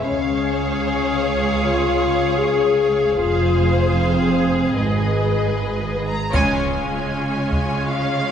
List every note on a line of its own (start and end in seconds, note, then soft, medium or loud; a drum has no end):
0.04 3.16 C#2 soft
0.04 1.45 C#4 medium
0.04 3.15 G#4 soft
0.04 3.16 C#5 soft
0.04 3.16 F5 soft
1.62 2.40 F4 medium
2.38 3.19 G#4 medium
3.18 4.77 F1 medium
3.18 4.77 F2 medium
3.18 3.96 F4 medium
3.18 6.10 G#4 soft
3.18 4.77 C5 soft
3.22 4.75 F5 soft
3.96 4.74 C4 medium
4.76 6.11 G#1 soft
4.76 6.10 G#2 soft
4.76 6.08 G#3 soft
4.76 6.11 B4 soft
4.76 6.05 D#5 soft
6.09 6.32 A#5 soft
6.32 6.83 C#2 medium
6.32 8.32 C#3 medium
6.32 8.32 G#3 soft
6.32 8.32 C#4 soft
6.32 8.32 F4 medium
6.32 8.32 C#5 medium
6.32 taiko soft
6.32 impact soft
6.32 triangle soft
6.36 7.88 G#5 medium
6.87 6.96 C#4 soft
6.87 6.96 F4 soft
7.51 taiko soft
7.64 7.73 C#4 soft
7.64 7.73 F4 soft
7.90 8.32 F5 medium